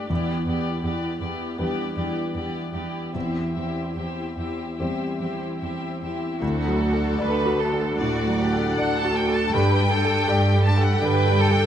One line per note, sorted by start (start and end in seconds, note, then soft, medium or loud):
0.00 0.12 G3 soft
0.00 0.12 D4 soft
0.00 0.12 A4 soft
0.10 0.18 E2 soft
0.10 3.11 E2 soft
0.10 0.45 B3 soft
0.10 0.45 E4 soft
0.10 0.46 G4 soft
0.10 0.46 D5 soft
0.46 0.55 E2 soft
0.46 0.81 B3 soft
0.46 0.81 E4 soft
0.46 0.82 G4 soft
0.46 0.82 D5 soft
0.82 0.91 E2 soft
0.82 1.19 B3 soft
0.82 1.19 E4 soft
0.82 1.19 G4 soft
0.82 1.19 D5 soft
1.20 1.29 E2 soft
1.20 1.57 B3 soft
1.20 1.57 E4 soft
1.20 1.57 G4 soft
1.20 1.57 D5 soft
1.58 1.67 E2 soft
1.58 3.11 G3 soft
1.58 1.94 B3 soft
1.58 3.11 D4 soft
1.58 1.94 E4 soft
1.58 1.95 G4 soft
1.58 3.11 B4 soft
1.58 1.95 D5 soft
1.95 2.05 E2 soft
1.95 2.33 B3 soft
1.95 2.33 E4 soft
1.95 2.34 G4 soft
1.95 2.34 D5 soft
2.35 2.43 E2 soft
2.35 2.73 B3 soft
2.35 2.73 E4 soft
2.35 2.72 G4 soft
2.35 2.72 D5 soft
2.73 2.82 E2 soft
2.73 3.14 B3 soft
2.73 3.14 E4 soft
2.73 3.12 G4 soft
2.73 3.13 D5 soft
3.14 3.23 E2 soft
3.14 6.38 E2 soft
3.14 3.55 C4 soft
3.14 3.55 E4 soft
3.14 3.54 G4 soft
3.14 3.54 E5 soft
3.55 3.63 E2 soft
3.55 3.96 C4 soft
3.55 3.96 E4 soft
3.55 3.94 G4 soft
3.55 3.94 E5 soft
3.95 4.05 E2 soft
3.95 4.37 C4 soft
3.95 4.37 E4 soft
3.95 4.36 G4 soft
3.95 4.36 E5 soft
4.37 4.46 E2 soft
4.37 4.79 C4 soft
4.37 4.79 E4 soft
4.37 4.77 G4 soft
4.37 4.76 E5 soft
4.78 4.88 E2 soft
4.78 6.38 G3 soft
4.78 5.20 C4 soft
4.78 6.39 C4 soft
4.78 5.20 E4 soft
4.78 5.18 G4 soft
4.78 6.39 C5 soft
4.78 5.18 E5 soft
5.19 5.29 E2 soft
5.19 5.62 C4 soft
5.19 5.61 E4 soft
5.19 5.59 G4 soft
5.19 5.59 E5 soft
5.60 5.70 E2 soft
5.60 6.02 C4 soft
5.60 6.02 E4 soft
5.60 6.01 G4 soft
5.60 6.00 E5 soft
6.02 6.11 E2 soft
6.02 6.43 C4 soft
6.02 6.43 E4 soft
6.02 6.41 G4 soft
6.02 6.41 E5 soft
6.42 7.97 D2 medium
6.42 7.10 D2 medium
6.42 7.15 F#4 medium
6.42 7.97 A4 medium
6.67 7.09 F#3 soft
6.82 7.58 D4 medium
6.82 7.58 F#4 soft
6.93 7.35 A4 soft
7.19 7.92 D2 medium
7.19 7.60 B4 medium
7.19 7.62 D5 soft
7.46 7.90 F#4 soft
7.59 8.39 D4 soft
7.59 8.38 F#4 soft
7.59 8.01 A4 medium
7.74 8.17 A4 soft
8.00 8.69 D2 medium
8.00 8.43 A2 soft
8.00 8.39 F#4 medium
8.00 8.78 D5 medium
8.27 8.68 F#3 soft
8.40 9.15 D4 soft
8.40 8.78 G4 medium
8.40 9.15 F#5 soft
8.53 8.93 A4 soft
8.78 9.45 D2 medium
8.78 9.52 A4 medium
8.78 9.18 D5 soft
8.78 8.97 F#5 medium
8.98 9.17 A5 medium
9.04 9.44 F#4 soft
9.16 9.53 D4 soft
9.16 9.53 F#4 medium
9.16 9.35 G5 medium
9.29 9.54 A4 soft
9.35 9.54 A5 medium
9.53 10.19 G2 medium
9.53 10.97 G2 medium
9.53 9.90 D4 soft
9.53 9.90 A4 soft
9.53 9.91 B4 medium
9.53 10.63 G5 medium
9.79 10.18 G3 soft
9.90 10.63 D4 medium
9.90 10.27 A4 medium
9.90 10.63 A4 medium
10.05 10.43 A4 soft
10.27 10.92 G2 medium
10.27 11.01 G4 medium
10.27 10.67 D5 medium
10.53 10.92 G4 soft
10.65 11.37 D4 soft
10.65 11.37 A4 soft
10.65 10.82 A5 medium
10.78 11.16 A4 soft
10.82 11.01 F#5 medium
11.01 11.66 G2 medium
11.01 11.41 D3 soft
11.01 11.38 B4 medium
11.01 11.66 G5 medium
11.26 11.65 G3 soft
11.39 11.66 D4 medium
11.39 11.66 A4 medium
11.51 11.66 A4 soft